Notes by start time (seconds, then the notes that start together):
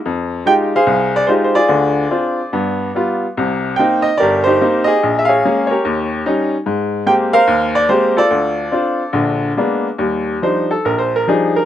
0.06 F2
0.45 G#3 D#4 F4 G4 G5
0.76 G#4 C5 F5
0.87 C2
1.16 D5
1.27 G#3 D#4 F4 G4 C5
1.44 C5
1.55 F4 G#4 D5
1.69 D2 D3
2.11 C4 D4 F4
2.53 G2 B3
2.95 G3 B3 F4
3.37 C2 C3
3.76 A#3 C4 D#4 G5
4.02 D#5
4.18 G1 G4 A#4 D5
4.44 D#4 G4 C5
4.61 A#3 C4 D#4
4.84 G#4 D#5
5.03 A#1
5.19 E5
5.25 G#4 F5
5.29 C#5
5.45 G#3 A#3 C#4
5.67 G4 A#4 C#5
5.85 D#2
6.26 G3 C#4 D#4
6.66 G#2
7.06 G#3 A#3 C4 G4 G5
7.33 A#4 C5 F5
7.47 D#2
7.75 D5
7.89 G#3 A#3 C4 G4 C5
8.17 F4 A4 D5
8.31 D2
8.71 C4 D4 F4
9.13 A#1 D3
9.57 G#3 A#3 B3 D4
9.98 D#2 G3
10.42 F3 G3 D4 D#4 C5
10.71 A4
10.85 A#1 A#4
10.99 C5
11.16 A#4
11.27 F3 G3 D4 D#4 G#4
11.56 A#4